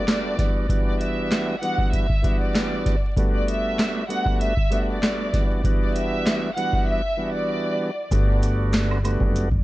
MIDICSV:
0, 0, Header, 1, 5, 480
1, 0, Start_track
1, 0, Key_signature, 1, "major"
1, 0, Tempo, 618557
1, 538, Time_signature, 4, 2, 24, 8
1, 7478, End_track
2, 0, Start_track
2, 0, Title_t, "Violin section"
2, 0, Program_c, 0, 48
2, 0, Note_on_c, 0, 74, 82
2, 506, Note_off_c, 0, 74, 0
2, 677, Note_on_c, 0, 74, 69
2, 769, Note_off_c, 0, 74, 0
2, 786, Note_on_c, 0, 76, 70
2, 1233, Note_off_c, 0, 76, 0
2, 1256, Note_on_c, 0, 78, 96
2, 1473, Note_off_c, 0, 78, 0
2, 1501, Note_on_c, 0, 76, 75
2, 1853, Note_off_c, 0, 76, 0
2, 1873, Note_on_c, 0, 74, 75
2, 2426, Note_off_c, 0, 74, 0
2, 2592, Note_on_c, 0, 74, 66
2, 2686, Note_off_c, 0, 74, 0
2, 2707, Note_on_c, 0, 76, 80
2, 3154, Note_off_c, 0, 76, 0
2, 3180, Note_on_c, 0, 78, 82
2, 3395, Note_off_c, 0, 78, 0
2, 3422, Note_on_c, 0, 76, 82
2, 3774, Note_off_c, 0, 76, 0
2, 3809, Note_on_c, 0, 74, 74
2, 4354, Note_off_c, 0, 74, 0
2, 4523, Note_on_c, 0, 74, 69
2, 4612, Note_off_c, 0, 74, 0
2, 4627, Note_on_c, 0, 76, 84
2, 5074, Note_off_c, 0, 76, 0
2, 5086, Note_on_c, 0, 78, 85
2, 5307, Note_off_c, 0, 78, 0
2, 5337, Note_on_c, 0, 76, 75
2, 5691, Note_off_c, 0, 76, 0
2, 5698, Note_on_c, 0, 74, 76
2, 6259, Note_off_c, 0, 74, 0
2, 7478, End_track
3, 0, Start_track
3, 0, Title_t, "Tonewheel organ"
3, 0, Program_c, 1, 16
3, 51, Note_on_c, 1, 55, 76
3, 56, Note_on_c, 1, 57, 70
3, 62, Note_on_c, 1, 59, 65
3, 66, Note_on_c, 1, 62, 71
3, 73, Note_on_c, 1, 66, 81
3, 275, Note_off_c, 1, 55, 0
3, 280, Note_off_c, 1, 57, 0
3, 280, Note_on_c, 1, 52, 72
3, 282, Note_off_c, 1, 59, 0
3, 285, Note_off_c, 1, 62, 0
3, 285, Note_on_c, 1, 55, 63
3, 289, Note_off_c, 1, 66, 0
3, 291, Note_on_c, 1, 59, 66
3, 296, Note_on_c, 1, 62, 68
3, 301, Note_on_c, 1, 66, 87
3, 512, Note_off_c, 1, 52, 0
3, 515, Note_off_c, 1, 55, 0
3, 518, Note_off_c, 1, 59, 0
3, 520, Note_off_c, 1, 62, 0
3, 523, Note_off_c, 1, 66, 0
3, 528, Note_on_c, 1, 52, 89
3, 533, Note_on_c, 1, 55, 78
3, 539, Note_on_c, 1, 59, 77
3, 544, Note_on_c, 1, 62, 78
3, 549, Note_on_c, 1, 66, 99
3, 1203, Note_off_c, 1, 52, 0
3, 1206, Note_off_c, 1, 55, 0
3, 1209, Note_off_c, 1, 59, 0
3, 1211, Note_off_c, 1, 62, 0
3, 1214, Note_off_c, 1, 66, 0
3, 1253, Note_on_c, 1, 52, 91
3, 1258, Note_on_c, 1, 55, 81
3, 1263, Note_on_c, 1, 59, 75
3, 1269, Note_on_c, 1, 62, 89
3, 1275, Note_on_c, 1, 66, 95
3, 1599, Note_off_c, 1, 52, 0
3, 1602, Note_off_c, 1, 55, 0
3, 1604, Note_off_c, 1, 59, 0
3, 1607, Note_off_c, 1, 62, 0
3, 1610, Note_off_c, 1, 66, 0
3, 1724, Note_on_c, 1, 52, 89
3, 1729, Note_on_c, 1, 55, 85
3, 1734, Note_on_c, 1, 59, 85
3, 1740, Note_on_c, 1, 62, 81
3, 1745, Note_on_c, 1, 66, 94
3, 2293, Note_off_c, 1, 52, 0
3, 2295, Note_off_c, 1, 55, 0
3, 2298, Note_off_c, 1, 59, 0
3, 2301, Note_off_c, 1, 62, 0
3, 2303, Note_off_c, 1, 66, 0
3, 2457, Note_on_c, 1, 55, 84
3, 2462, Note_on_c, 1, 57, 77
3, 2467, Note_on_c, 1, 59, 80
3, 2472, Note_on_c, 1, 62, 77
3, 2478, Note_on_c, 1, 66, 97
3, 3128, Note_off_c, 1, 55, 0
3, 3130, Note_off_c, 1, 57, 0
3, 3133, Note_off_c, 1, 59, 0
3, 3135, Note_off_c, 1, 62, 0
3, 3138, Note_off_c, 1, 66, 0
3, 3169, Note_on_c, 1, 55, 87
3, 3174, Note_on_c, 1, 57, 80
3, 3180, Note_on_c, 1, 59, 82
3, 3184, Note_on_c, 1, 62, 78
3, 3190, Note_on_c, 1, 66, 102
3, 3517, Note_off_c, 1, 55, 0
3, 3520, Note_off_c, 1, 57, 0
3, 3522, Note_off_c, 1, 59, 0
3, 3525, Note_off_c, 1, 62, 0
3, 3527, Note_off_c, 1, 66, 0
3, 3650, Note_on_c, 1, 55, 92
3, 3655, Note_on_c, 1, 57, 79
3, 3661, Note_on_c, 1, 59, 82
3, 3666, Note_on_c, 1, 62, 85
3, 3672, Note_on_c, 1, 66, 95
3, 3877, Note_off_c, 1, 55, 0
3, 3880, Note_off_c, 1, 57, 0
3, 3883, Note_off_c, 1, 59, 0
3, 3885, Note_off_c, 1, 62, 0
3, 3888, Note_off_c, 1, 66, 0
3, 3889, Note_on_c, 1, 55, 79
3, 3894, Note_on_c, 1, 57, 70
3, 3899, Note_on_c, 1, 59, 65
3, 3905, Note_on_c, 1, 62, 73
3, 3910, Note_on_c, 1, 66, 82
3, 4116, Note_off_c, 1, 55, 0
3, 4119, Note_off_c, 1, 57, 0
3, 4120, Note_on_c, 1, 52, 72
3, 4122, Note_off_c, 1, 59, 0
3, 4125, Note_off_c, 1, 62, 0
3, 4126, Note_on_c, 1, 55, 64
3, 4128, Note_off_c, 1, 66, 0
3, 4131, Note_on_c, 1, 59, 65
3, 4136, Note_on_c, 1, 62, 67
3, 4142, Note_on_c, 1, 66, 84
3, 4352, Note_off_c, 1, 52, 0
3, 4355, Note_off_c, 1, 55, 0
3, 4358, Note_off_c, 1, 59, 0
3, 4360, Note_off_c, 1, 62, 0
3, 4363, Note_off_c, 1, 66, 0
3, 4368, Note_on_c, 1, 52, 95
3, 4373, Note_on_c, 1, 55, 83
3, 4378, Note_on_c, 1, 59, 77
3, 4384, Note_on_c, 1, 62, 76
3, 4389, Note_on_c, 1, 66, 100
3, 5043, Note_off_c, 1, 52, 0
3, 5046, Note_off_c, 1, 55, 0
3, 5048, Note_off_c, 1, 59, 0
3, 5051, Note_off_c, 1, 62, 0
3, 5054, Note_off_c, 1, 66, 0
3, 5094, Note_on_c, 1, 52, 92
3, 5099, Note_on_c, 1, 55, 84
3, 5105, Note_on_c, 1, 59, 78
3, 5110, Note_on_c, 1, 62, 88
3, 5115, Note_on_c, 1, 66, 102
3, 5440, Note_off_c, 1, 52, 0
3, 5442, Note_off_c, 1, 55, 0
3, 5445, Note_off_c, 1, 59, 0
3, 5448, Note_off_c, 1, 62, 0
3, 5450, Note_off_c, 1, 66, 0
3, 5563, Note_on_c, 1, 52, 87
3, 5569, Note_on_c, 1, 55, 87
3, 5574, Note_on_c, 1, 59, 87
3, 5579, Note_on_c, 1, 62, 82
3, 5584, Note_on_c, 1, 66, 95
3, 6132, Note_off_c, 1, 52, 0
3, 6135, Note_off_c, 1, 55, 0
3, 6138, Note_off_c, 1, 59, 0
3, 6140, Note_off_c, 1, 62, 0
3, 6143, Note_off_c, 1, 66, 0
3, 6295, Note_on_c, 1, 55, 83
3, 6300, Note_on_c, 1, 57, 77
3, 6306, Note_on_c, 1, 59, 84
3, 6312, Note_on_c, 1, 62, 79
3, 6316, Note_on_c, 1, 66, 98
3, 6967, Note_off_c, 1, 55, 0
3, 6969, Note_off_c, 1, 57, 0
3, 6972, Note_off_c, 1, 59, 0
3, 6975, Note_off_c, 1, 62, 0
3, 6977, Note_off_c, 1, 66, 0
3, 7010, Note_on_c, 1, 55, 92
3, 7015, Note_on_c, 1, 57, 82
3, 7021, Note_on_c, 1, 59, 86
3, 7026, Note_on_c, 1, 62, 80
3, 7031, Note_on_c, 1, 66, 97
3, 7357, Note_off_c, 1, 55, 0
3, 7360, Note_off_c, 1, 57, 0
3, 7363, Note_off_c, 1, 59, 0
3, 7366, Note_off_c, 1, 62, 0
3, 7368, Note_off_c, 1, 66, 0
3, 7478, End_track
4, 0, Start_track
4, 0, Title_t, "Fingered electric bass"
4, 0, Program_c, 2, 33
4, 6297, Note_on_c, 2, 31, 106
4, 7123, Note_off_c, 2, 31, 0
4, 7143, Note_on_c, 2, 30, 88
4, 7478, Note_off_c, 2, 30, 0
4, 7478, End_track
5, 0, Start_track
5, 0, Title_t, "Drums"
5, 60, Note_on_c, 9, 39, 85
5, 61, Note_on_c, 9, 38, 105
5, 62, Note_on_c, 9, 42, 82
5, 138, Note_off_c, 9, 39, 0
5, 139, Note_off_c, 9, 38, 0
5, 140, Note_off_c, 9, 42, 0
5, 299, Note_on_c, 9, 36, 85
5, 301, Note_on_c, 9, 42, 64
5, 303, Note_on_c, 9, 38, 32
5, 376, Note_off_c, 9, 36, 0
5, 379, Note_off_c, 9, 42, 0
5, 381, Note_off_c, 9, 38, 0
5, 536, Note_on_c, 9, 36, 111
5, 543, Note_on_c, 9, 42, 91
5, 614, Note_off_c, 9, 36, 0
5, 620, Note_off_c, 9, 42, 0
5, 782, Note_on_c, 9, 42, 78
5, 859, Note_off_c, 9, 42, 0
5, 1020, Note_on_c, 9, 39, 89
5, 1021, Note_on_c, 9, 38, 107
5, 1024, Note_on_c, 9, 42, 88
5, 1097, Note_off_c, 9, 39, 0
5, 1099, Note_off_c, 9, 38, 0
5, 1102, Note_off_c, 9, 42, 0
5, 1263, Note_on_c, 9, 42, 73
5, 1340, Note_off_c, 9, 42, 0
5, 1382, Note_on_c, 9, 36, 87
5, 1460, Note_off_c, 9, 36, 0
5, 1499, Note_on_c, 9, 36, 83
5, 1501, Note_on_c, 9, 42, 77
5, 1577, Note_off_c, 9, 36, 0
5, 1578, Note_off_c, 9, 42, 0
5, 1625, Note_on_c, 9, 36, 93
5, 1702, Note_off_c, 9, 36, 0
5, 1738, Note_on_c, 9, 36, 88
5, 1740, Note_on_c, 9, 42, 81
5, 1815, Note_off_c, 9, 36, 0
5, 1818, Note_off_c, 9, 42, 0
5, 1980, Note_on_c, 9, 39, 88
5, 1981, Note_on_c, 9, 38, 106
5, 1983, Note_on_c, 9, 42, 80
5, 2058, Note_off_c, 9, 39, 0
5, 2059, Note_off_c, 9, 38, 0
5, 2060, Note_off_c, 9, 42, 0
5, 2219, Note_on_c, 9, 36, 88
5, 2221, Note_on_c, 9, 42, 64
5, 2223, Note_on_c, 9, 38, 33
5, 2297, Note_off_c, 9, 36, 0
5, 2299, Note_off_c, 9, 42, 0
5, 2301, Note_off_c, 9, 38, 0
5, 2457, Note_on_c, 9, 36, 109
5, 2463, Note_on_c, 9, 42, 94
5, 2534, Note_off_c, 9, 36, 0
5, 2540, Note_off_c, 9, 42, 0
5, 2703, Note_on_c, 9, 42, 82
5, 2781, Note_off_c, 9, 42, 0
5, 2941, Note_on_c, 9, 39, 87
5, 2942, Note_on_c, 9, 38, 106
5, 2945, Note_on_c, 9, 42, 82
5, 3018, Note_off_c, 9, 39, 0
5, 3020, Note_off_c, 9, 38, 0
5, 3023, Note_off_c, 9, 42, 0
5, 3183, Note_on_c, 9, 42, 73
5, 3261, Note_off_c, 9, 42, 0
5, 3303, Note_on_c, 9, 36, 86
5, 3380, Note_off_c, 9, 36, 0
5, 3421, Note_on_c, 9, 42, 77
5, 3499, Note_off_c, 9, 42, 0
5, 3546, Note_on_c, 9, 36, 91
5, 3623, Note_off_c, 9, 36, 0
5, 3661, Note_on_c, 9, 42, 81
5, 3738, Note_off_c, 9, 42, 0
5, 3901, Note_on_c, 9, 39, 83
5, 3902, Note_on_c, 9, 38, 111
5, 3904, Note_on_c, 9, 42, 81
5, 3979, Note_off_c, 9, 39, 0
5, 3980, Note_off_c, 9, 38, 0
5, 3981, Note_off_c, 9, 42, 0
5, 4139, Note_on_c, 9, 36, 87
5, 4142, Note_on_c, 9, 42, 65
5, 4144, Note_on_c, 9, 38, 33
5, 4217, Note_off_c, 9, 36, 0
5, 4219, Note_off_c, 9, 42, 0
5, 4221, Note_off_c, 9, 38, 0
5, 4377, Note_on_c, 9, 36, 114
5, 4382, Note_on_c, 9, 42, 94
5, 4454, Note_off_c, 9, 36, 0
5, 4460, Note_off_c, 9, 42, 0
5, 4622, Note_on_c, 9, 42, 79
5, 4700, Note_off_c, 9, 42, 0
5, 4861, Note_on_c, 9, 39, 86
5, 4862, Note_on_c, 9, 38, 109
5, 4865, Note_on_c, 9, 42, 85
5, 4938, Note_off_c, 9, 39, 0
5, 4940, Note_off_c, 9, 38, 0
5, 4943, Note_off_c, 9, 42, 0
5, 5103, Note_on_c, 9, 42, 73
5, 5180, Note_off_c, 9, 42, 0
5, 5223, Note_on_c, 9, 36, 84
5, 5300, Note_off_c, 9, 36, 0
5, 6296, Note_on_c, 9, 36, 115
5, 6296, Note_on_c, 9, 82, 74
5, 6302, Note_on_c, 9, 42, 99
5, 6374, Note_off_c, 9, 36, 0
5, 6374, Note_off_c, 9, 82, 0
5, 6380, Note_off_c, 9, 42, 0
5, 6538, Note_on_c, 9, 82, 50
5, 6542, Note_on_c, 9, 42, 78
5, 6616, Note_off_c, 9, 82, 0
5, 6619, Note_off_c, 9, 42, 0
5, 6774, Note_on_c, 9, 82, 74
5, 6780, Note_on_c, 9, 39, 89
5, 6782, Note_on_c, 9, 38, 111
5, 6785, Note_on_c, 9, 42, 86
5, 6852, Note_off_c, 9, 82, 0
5, 6858, Note_off_c, 9, 39, 0
5, 6859, Note_off_c, 9, 38, 0
5, 6862, Note_off_c, 9, 42, 0
5, 6916, Note_on_c, 9, 76, 65
5, 6993, Note_off_c, 9, 76, 0
5, 7020, Note_on_c, 9, 76, 74
5, 7020, Note_on_c, 9, 82, 54
5, 7023, Note_on_c, 9, 42, 73
5, 7098, Note_off_c, 9, 76, 0
5, 7098, Note_off_c, 9, 82, 0
5, 7100, Note_off_c, 9, 42, 0
5, 7142, Note_on_c, 9, 36, 86
5, 7220, Note_off_c, 9, 36, 0
5, 7261, Note_on_c, 9, 42, 81
5, 7262, Note_on_c, 9, 82, 73
5, 7339, Note_off_c, 9, 42, 0
5, 7340, Note_off_c, 9, 82, 0
5, 7385, Note_on_c, 9, 36, 90
5, 7462, Note_off_c, 9, 36, 0
5, 7478, End_track
0, 0, End_of_file